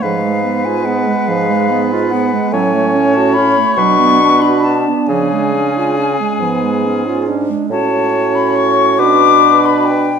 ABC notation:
X:1
M:6/8
L:1/16
Q:3/8=47
K:F#m
V:1 name="Flute"
=f3 _a ^f2 =f4 ^f2 | g3 a b2 c'3 b a2 | g8- g2 z2 | a3 b c'2 d'3 b =g2 |]
V:2 name="Oboe"
_c12 | c6 B4 z2 | G8- G2 z2 | c6 B6 |]
V:3 name="French horn"
_A,12 | C6 D6- | D4 z2 B,3 C D2 | C6 D6 |]
V:4 name="Clarinet"
=F, _A, _C =F C A, F, A, C F C A, | F, A, C F C A, F, B, D F D B, | ^E, G, C ^E C G, E, G, C E C G, | F12 |]
V:5 name="Bassoon" clef=bass
_A,,6 A,,6 | A,,6 B,,6 | C,6 G,,6 | A,,6 B,,6 |]